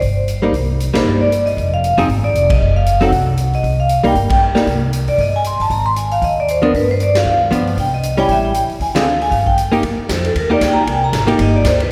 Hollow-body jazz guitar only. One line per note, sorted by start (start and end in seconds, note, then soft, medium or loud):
0.42 0.52 G3 medium
0.42 0.52 A#3 medium
0.42 0.53 D#4 medium
0.94 1.28 G3 medium
0.94 1.28 A#3 medium
0.94 1.29 D#4 medium
1.98 2.07 F3 medium
1.98 2.07 C4 medium
1.98 2.07 D#4 medium
1.98 2.08 G#4 medium
3.01 3.10 F#3 medium
3.01 3.10 C4 medium
3.01 3.11 D#4 medium
3.01 3.11 A4 medium
4.04 4.13 G3 medium
4.04 4.14 A#3 medium
4.04 4.14 D#4 medium
4.55 4.65 G3 medium
4.55 4.65 A#3 medium
4.55 4.66 D#4 medium
6.62 6.72 F3 medium
6.62 6.72 B3 medium
6.62 6.72 D4 medium
7.51 7.77 F3 medium
7.51 7.77 B3 medium
7.51 7.77 D4 medium
8.17 8.52 G3 medium
8.17 8.52 C#4 medium
8.17 8.52 E4 medium
8.95 9.05 D3 medium
8.95 9.05 G#3 medium
8.95 9.05 C4 medium
8.95 9.05 F4 medium
9.72 9.82 A#3 medium
9.72 9.82 D#4 medium
9.72 9.83 G4 medium
10.50 10.85 A#3 medium
10.50 10.85 D#4 medium
10.50 10.85 G4 medium
11.27 11.62 A#3 medium
11.27 11.62 D#4 medium
11.27 11.62 G4 medium